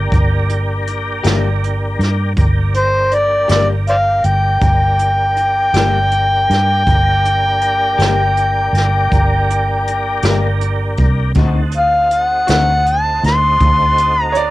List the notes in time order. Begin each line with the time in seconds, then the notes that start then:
Already playing: A#3 D4 G4 A#4
0.12 G1, kick, closed hi-hat
0.49 closed hi-hat
0.87 closed hi-hat
1.24 G1 G3 A#3 D4 G4, snare, closed hi-hat
1.64 closed hi-hat
1.99 G2, snare, closed hi-hat
2.37 G1 A#3 D4 G4 A#4, kick, closed hi-hat
2.74 C5, closed hi-hat
3.11 D5, closed hi-hat
3.48 G1 G3 A#3 D4 G4 D5, snare, closed hi-hat
3.87 C5 D5 F5, closed hi-hat
4.24 G1 G5, closed hi-hat
4.61 G1 G5, kick, closed hi-hat
4.99 closed hi-hat
5.36 closed hi-hat
5.74 G1 G3 A#3 D4 G4, snare, closed hi-hat
6.11 closed hi-hat
6.50 G2, snare, closed hi-hat
6.87 G1 A#3 D4 G4 A#4, kick, closed hi-hat
7.25 closed hi-hat
7.61 closed hi-hat
7.98 G1 G3 A#3 D4 G4, snare, closed hi-hat
8.37 closed hi-hat
8.73 G1, closed hi-hat
8.77 snare
9.12 G1, kick, closed hi-hat
9.50 closed hi-hat
9.87 closed hi-hat
10.22 G1 G3 A#3 D4 G4, snare, closed hi-hat
10.61 closed hi-hat
10.97 C2, kick, closed hi-hat
11.34 D2 D3 C4 D#4 F#4 A4, kick, closed hi-hat
11.39 F#4
11.71 closed hi-hat
11.77 F5
12.11 F#5, closed hi-hat
12.47 D2 D3 C4 D#4 F#4 F#5, snare, closed hi-hat
12.86 A5, closed hi-hat
13.24 D2 C6, snare, closed hi-hat
13.60 D2, kick, closed hi-hat
13.98 closed hi-hat
14.23 A#5
14.32 C#5, closed hi-hat
14.37 D5